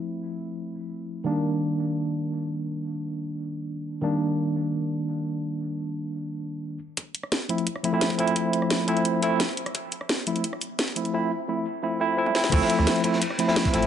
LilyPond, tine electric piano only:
\new Staff \with { instrumentName = "Tine electric piano" } { \time 4/4 \key f \mixolydian \tempo 4 = 173 <f a c' e'>2.~ <f a c' e'>8 <ees g bes d'>8~ | <ees g bes d'>1~ | <ees g bes d'>2.~ <ees g bes d'>8 <ees g bes d'>8~ | <ees g bes d'>1~ |
<ees g bes d'>2.~ <ees g bes d'>8 r8 | r4. <f a c' e'>8 r8 <f a c' e'>16 <f a c' e'>8. <f a c' e'>8~ | <f a c' e'>4. <f a c' e'>4 <f a c' e'>8 r4 | r4. <f a c' e'>8 r4. <f a c' e'>8 |
<f a c' e'>8 r8 <f a c' e'>8 r8 <f a c' e'>8 <f a c' e'>8 <f a c' e'>8 <f a c' e'>8 | <f a c' e'>4. <f a c' e'>8 r8 <f a c' e'>16 <f a c' e'>8. <f a c' e'>8 | }